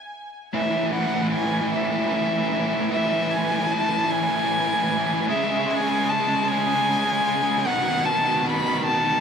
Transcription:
0.53 A2 E3 E5
0.61 A2 E3
0.69 A2 E3
0.76 A2 E3
0.83 A2 E3
0.92 A2 E3 F#5
0.99 A2 E3
1.07 A2 E3
1.14 A2 E3
1.22 A2 E3
1.29 A2 E3
1.34 A2 E3 G#5
1.44 A2 E3
1.52 A2 E3
1.61 A2 E3
1.67 A2 E3
1.73 A2 E3 E5
1.83 A2 E3
1.91 A2 E3
1.98 A2 E3
2.05 A2 E3
2.12 A2 E3
2.21 A2 E3
2.28 A2 E3
2.36 A2 E3
2.43 A2 E3
2.51 A2 E3
2.58 A2 E3
2.66 A2 E3
2.73 A2 E3
2.80 A2 E3
2.90 A2 E3 E5
2.97 A2 E3
3.05 A2 E3
3.13 A2 E3
3.21 A2 E3
3.28 A2 E3 G#5
3.37 A2 E3
3.44 A2 E3
3.52 A2 E3
3.59 A2 E3
3.67 A2 E3
3.71 A2 A5
3.76 E3
3.82 A2 E3
3.89 A2 E3
3.98 A2 E3
4.05 A2 E3
4.10 A2 E3 G#5
4.21 A2 E3
4.28 A2 E3
4.36 A2 E3
4.43 A2 E3
4.51 A2 E3
4.59 A2 E3
4.67 A2 E3
4.74 A2 E3
4.83 A2 E3
4.90 A2 E3
4.98 A2 E3
5.05 A2 E3
5.13 A2 E3
5.20 A2 E3
5.28 C#3 G#3 E5
5.35 C#3 G#3
5.43 C#3 G#3
5.50 C#3 G#3
5.57 C#3 G#3
5.66 C#3 G#3
5.70 C#3 G#3 G#5
5.81 C#3 G#3
5.89 C#3 G#3
5.97 C#3 G#3
6.04 C#3 G#3
6.09 C#3 G#3 A5
6.19 C#3 G#3
6.28 C#3 G#3
6.35 C#3 G#3
6.43 C#3 G#3
6.48 C#3 G#3 G#5
6.58 C#3 G#3
6.66 C#3 G#3
6.74 C#3 G#3
6.81 C#3 G#3
6.89 C#3 G#3
6.96 C#3 G#3
7.04 C#3 G#3
7.12 C#3 G#3
7.20 C#3 G#3
7.28 C#3 G#3
7.35 C#3 G#3
7.42 C#3 G#3
7.50 C#3 G#3
7.58 C#3 G#3
7.66 B2 D#3 F#5
7.74 B2 D#3
7.81 B2 D#3
7.89 B2 D#3
7.97 B2 D#3
8.03 B2 D#3 A5
8.12 B2 D#3
8.19 B2 D#3
8.27 B2 D#3
8.35 B2 D#3
8.43 B2 D#3 B5
8.50 B2 D#3
8.57 B2 D#3
8.66 B2 D#3
8.73 B2 D#3
8.82 B2 D#3 A5
8.89 B2 D#3
8.97 B2 D#3
9.04 B2 D#3
9.12 B2 D#3

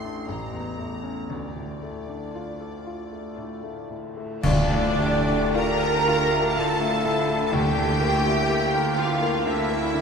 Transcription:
Already playing: A1 A2 A3 C6
0.05 D4
0.28 A1 A2 A3 E4 G4 C#5 A#5
0.53 E2
0.78 A3
1.03 C#4
1.29 D2 D3 D5
1.56 A2
1.83 A3
2.09 D4
2.34 A3 D4 F4 D5
2.60 A4
2.86 F4
3.12 A3
3.36 A2 A3 D4 F4 D5
3.63 A3
3.90 A2
4.17 A3
4.42 D2 D3 A3 D4 F4 D5, concert bass drum, crash
4.70 A2
4.98 A3 G4
5.28 D4
5.54 F4 A#4 A#5
5.82 A4
6.07 F4
6.32 A3
6.55 A2 F4 A4 A5
6.80 A3
7.04 A2 E4
7.29 A3
7.46 A5
7.52 D2 D3 A#3 D4 E4 G4 G5
7.77 D3
8.01 A#3
8.26 E4
8.48 A#3 G4
8.75 A#4
8.96 F4 G4 F5
9.23 A#3
9.45 D3 C4 E4 E5
9.70 A#3
9.93 D3 D4

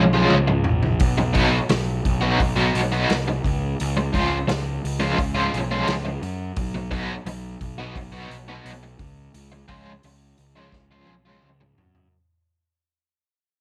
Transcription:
Already playing: B1
0.13 F3 G#3 C#4 F4, high tom
0.30 C#2, mid tom
0.47 muted overdriven electric guitar stroke, mid tom
0.64 floor tom
0.69 A#1
0.83 floor tom
1.00 B1, kick, open hi-hat
1.18 muted overdriven electric guitar stroke
1.33 F#3 B3 D#4 F#4, kick, open hi-hat
1.69 B1, muted overdriven electric guitar stroke, snare, open hi-hat
2.05 B1, kick, open hi-hat
2.21 F#3 B3 D#4 F#4
2.39 B1, muted overdriven electric guitar stroke, kick, open hi-hat
2.56 F#3 B3 D#4 F#4
2.75 B1, open hi-hat
2.92 F#3 B3 D#4 F#4
3.10 C2, snare, open hi-hat
3.28 muted overdriven electric guitar stroke
3.44 C#2, kick, open hi-hat
3.80 C#2, open hi-hat
3.97 muted overdriven electric guitar stroke
4.13 C#2 F3 G#3 C#4 F4, kick, open hi-hat
4.48 C#2, muted overdriven electric guitar stroke, snare, open hi-hat
4.84 C#2, open hi-hat
5.00 F3 G#3 C#4 F4
5.18 C#2, muted overdriven electric guitar stroke, kick, open hi-hat
5.34 F3 G#3 C#4 F4
5.53 B1, open hi-hat
5.71 F3 G#3 C#4 F4
5.88 C#2, snare, open hi-hat
6.05 muted overdriven electric guitar stroke
6.22 F#2, open hi-hat
6.56 B1, kick, open hi-hat
6.74 muted overdriven electric guitar stroke
6.91 F#3 B3 D#4 F#4, kick, open hi-hat
7.26 B1, muted overdriven electric guitar stroke, open hi-hat
7.61 B1, kick, open hi-hat
7.78 F#3 B3 D#4 F#4
7.96 B1, muted overdriven electric guitar stroke, kick, open hi-hat
8.12 F#3 B3 D#4 F#4
8.30 B1, open hi-hat
8.48 F#3 B3 D#4 F#4
8.65 B1, open hi-hat
8.83 muted overdriven electric guitar stroke
8.99 C#2, kick, open hi-hat
9.34 C#2, open hi-hat
9.52 muted overdriven electric guitar stroke
9.68 C#2 F3 G#3 C#4 F4, kick, open hi-hat
10.03 C#2, muted overdriven electric guitar stroke, open hi-hat
10.38 C#2, open hi-hat
10.56 F3 G#3 C#4 F4
10.72 C#2, muted overdriven electric guitar stroke, kick, snare
10.92 F3 G#3 C#4 F4
11.07 B1, high tom
11.25 F3 G#3 C#4 F4
11.42 C#2, mid tom
11.60 muted overdriven electric guitar stroke, mid tom
11.78 F#2, floor tom
11.95 floor tom

